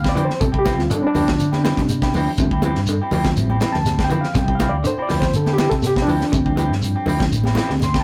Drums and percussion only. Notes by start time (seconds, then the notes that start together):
0.04 kick, snare, high conga
0.16 closed hi-hat, low conga, shekere
0.30 snare
0.41 kick, closed hi-hat, shekere
0.54 kick
0.65 kick, snare, closed hi-hat, high conga, shekere
0.79 snare
0.90 closed hi-hat, high conga, shekere
1.15 open hi-hat, high conga, low conga, shekere
1.28 kick, snare, closed hi-hat
1.39 closed hi-hat, high conga, shekere
1.53 snare, high conga
1.64 snare, closed hi-hat, high conga, shekere
1.77 kick, snare, closed hi-hat
1.88 closed hi-hat, high conga, shekere
2.02 kick, snare, high conga
2.14 open hi-hat, low conga, shekere
2.37 kick, closed hi-hat, high conga, shekere
2.51 kick
2.62 closed hi-hat, high conga, shekere
2.75 snare
2.86 closed hi-hat, high conga, shekere
3.11 open hi-hat, low conga, shekere
3.24 kick, snare, closed hi-hat
3.37 closed hi-hat, high conga, shekere
3.50 high conga
3.60 snare, closed hi-hat, high conga, shekere
3.74 snare, low conga
3.85 snare, closed hi-hat, high conga, shekere
3.99 kick, snare, high conga
4.09 closed hi-hat, low conga, shekere
4.24 snare
4.34 kick, snare, closed hi-hat, shekere
4.48 kick
4.60 kick, snare, closed hi-hat, high conga, shekere
4.84 closed hi-hat, high conga, shekere
5.09 snare, open hi-hat, low conga, shekere
5.22 kick, snare, closed hi-hat
5.33 closed hi-hat, high conga, shekere
5.46 snare, high conga
5.58 snare, closed hi-hat, high conga, shekere
5.71 kick, snare, closed hi-hat
5.82 snare, closed hi-hat, high conga, shekere
5.96 kick, snare
6.07 open hi-hat, low conga, shekere
6.21 snare
6.33 kick, closed hi-hat, high conga, shekere
6.46 kick
6.57 closed hi-hat, high conga, shekere
6.73 snare
6.82 closed hi-hat, high conga, shekere
7.06 open hi-hat, low conga, shekere
7.20 kick, snare, closed hi-hat
7.32 closed hi-hat, high conga, shekere
7.44 snare, high conga
7.55 snare, closed hi-hat, high conga, shekere
7.70 snare
7.80 snare, closed hi-hat, high conga, shekere
7.94 kick, snare